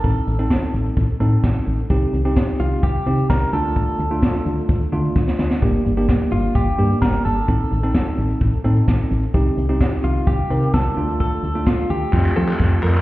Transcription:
Already playing: clean electric guitar A4
0.04 fm bass A1, tine electric piano C4 D#4 A4, kick, closed hi-hat
0.15 closed hi-hat
0.27 fm bass A1, closed hi-hat
0.39 tine electric piano C4 D#4 A4, closed hi-hat
0.50 kick, snare
0.62 closed hi-hat
0.74 fm bass A1, closed hi-hat
0.86 closed hi-hat
0.97 fm bass A1, kick, closed hi-hat
1.09 closed hi-hat
1.20 fm bass A2, tine electric piano C4 D#4 A4, closed hi-hat
1.32 closed hi-hat
1.44 fm bass A1, kick, snare
1.55 closed hi-hat
1.67 fm bass A1, closed hi-hat
1.79 closed hi-hat
1.90 fm bass C2, tine electric piano C4 D#4 G4, kick, closed hi-hat
2.02 closed hi-hat
2.13 fm bass C2, closed hi-hat
2.25 tine electric piano C4 D#4 G4, closed hi-hat
2.37 kick, snare
2.48 closed hi-hat
2.60 fm bass C2, clean electric guitar F4, closed hi-hat
2.72 closed hi-hat
2.83 fm bass C2, clean electric guitar G4, kick, closed hi-hat
2.95 closed hi-hat
3.06 fm bass C3, tine electric piano C4 D#4 G4, closed hi-hat
3.18 closed hi-hat
3.30 fm bass C2, clean electric guitar A#4, kick, snare
3.41 closed hi-hat
3.53 fm bass D2, tine electric piano A3 D4 F4, clean electric guitar A4, closed hi-hat
3.65 closed hi-hat
3.76 kick, closed hi-hat
3.88 closed hi-hat
3.99 fm bass D2, closed hi-hat
4.11 tine electric piano A3 D4 F4, closed hi-hat
4.23 kick, snare
4.34 closed hi-hat
4.46 fm bass D2, closed hi-hat
4.58 closed hi-hat
4.69 fm bass D2, kick, closed hi-hat
4.81 closed hi-hat
4.92 fm bass D3, tine electric piano A3 D4 F4, closed hi-hat
5.04 closed hi-hat
5.16 fm bass D2, kick, snare
5.27 snare
5.39 fm bass D2, snare
5.51 snare
5.62 fm bass G1, tine electric piano A#3 D4 G4, kick, closed hi-hat
5.74 closed hi-hat
5.85 fm bass G1, closed hi-hat
5.97 tine electric piano A#3 D4 G4, closed hi-hat
6.09 kick, snare
6.21 closed hi-hat
6.32 fm bass G1, clean electric guitar F4, closed hi-hat
6.44 closed hi-hat
6.55 fm bass G1, clean electric guitar G4, kick, closed hi-hat
6.67 closed hi-hat
6.78 fm bass G2, tine electric piano A#3 D4 G4, closed hi-hat
6.91 closed hi-hat
7.02 fm bass G1, clean electric guitar A#4, kick, snare
7.14 closed hi-hat
7.25 fm bass G1, clean electric guitar A4, closed hi-hat
7.37 closed hi-hat
7.48 fm bass A1, tine electric piano C4 D#4 A4, kick, closed hi-hat
7.60 closed hi-hat
7.72 fm bass A1, closed hi-hat
7.83 tine electric piano C4 D#4 A4, closed hi-hat
7.94 kick, snare
8.06 closed hi-hat
8.18 fm bass A1, closed hi-hat
8.30 closed hi-hat
8.41 fm bass A1, kick, closed hi-hat
8.53 closed hi-hat
8.64 fm bass A2, tine electric piano C4 D#4 A4, closed hi-hat
8.76 closed hi-hat
8.88 fm bass A1, kick, snare
9.00 closed hi-hat
9.11 fm bass A1, closed hi-hat
9.23 closed hi-hat
9.34 fm bass C2, tine electric piano C4 D#4 G4, kick, closed hi-hat
9.46 closed hi-hat
9.57 fm bass C2, closed hi-hat
9.69 tine electric piano C4 D#4 G4, closed hi-hat
9.81 kick, snare
9.92 closed hi-hat
10.04 fm bass C2, clean electric guitar F4, closed hi-hat
10.16 closed hi-hat
10.27 fm bass C2, clean electric guitar G4, kick, closed hi-hat
10.39 closed hi-hat
10.50 fm bass C3, tine electric piano C4 D#4 A#4, closed hi-hat
10.62 closed hi-hat
10.74 fm bass C2, clean electric guitar A4, kick, snare
10.85 closed hi-hat
10.97 fm bass D2, tine electric piano A3 D4 F4, closed hi-hat
11.09 closed hi-hat
11.20 clean electric guitar A4, kick, closed hi-hat
11.32 closed hi-hat
11.43 fm bass D2, closed hi-hat
11.55 tine electric piano A3 D4 F4, closed hi-hat
11.67 clean electric guitar F4, kick, snare
11.78 closed hi-hat
11.90 fm bass D2, clean electric guitar G4, closed hi-hat
12.02 closed hi-hat
12.13 fm bass F2, tine electric piano A3 C4 F4, kick, clap
12.25 clap
12.36 fm bass F3, tine electric piano A3 C4 F4, clean electric guitar A4
12.48 clap
12.60 fm bass F2, kick, clap
12.83 fm bass F2, clean electric guitar A#4, clap
12.95 clap

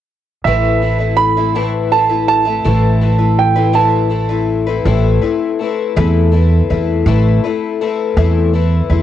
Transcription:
0.44 upright bass A1, twelve-string acoustic guitar A2 E3 A3 C4 E4 B4, grand piano E5
0.82 twelve-string acoustic guitar A3 C4 E4 B4
0.99 twelve-string acoustic guitar A3 C4 E4 B4
1.17 grand piano B5
1.37 twelve-string acoustic guitar A3 C4 E4 B4
1.55 twelve-string acoustic guitar A2 E3 A3 C4 E4 B4
1.92 twelve-string acoustic guitar A3 C4 E4 B4, grand piano A5
2.09 twelve-string acoustic guitar A3 C4 E4 B4
2.28 grand piano A5
2.45 twelve-string acoustic guitar A3 C4 E4 B4
2.64 upright bass A1, twelve-string acoustic guitar A2 E3 A3 C4 E4 B4
3.01 twelve-string acoustic guitar A3 C4 E4 B4
3.18 twelve-string acoustic guitar A3 C4 E4 B4
3.39 grand piano G5
3.56 twelve-string acoustic guitar A3 C4 E4 B4
3.73 twelve-string acoustic guitar A2 E3 A3 C4 E4 B4, grand piano A5
4.09 twelve-string acoustic guitar A3 C4 E4 B4
4.29 twelve-string acoustic guitar A3 C4 E4 B4
4.67 twelve-string acoustic guitar A3 C4 E4 B4
4.85 upright bass A1, twelve-string acoustic guitar A2 E3 A3 C4 E4 B4
5.22 twelve-string acoustic guitar A3 C4 E4 B4
5.59 twelve-string acoustic guitar A3 C4 E4 B4
5.96 upright bass E2, twelve-string acoustic guitar A2 E3 A3 C4 E4 B4
6.32 twelve-string acoustic guitar A3 C4 E4 B4
6.70 upright bass E2, twelve-string acoustic guitar A3 C4 E4 B4
7.06 upright bass A1, twelve-string acoustic guitar A2 E3 A3 C4 E4 B4
7.44 twelve-string acoustic guitar A3 C4 E4 B4
7.81 twelve-string acoustic guitar A3 C4 E4 B4
8.17 upright bass E2, twelve-string acoustic guitar A2 E3 A3 C4 E4 B4
8.53 twelve-string acoustic guitar A3 C4 E4 B4
8.90 upright bass E2, twelve-string acoustic guitar A3 C4 E4 B4

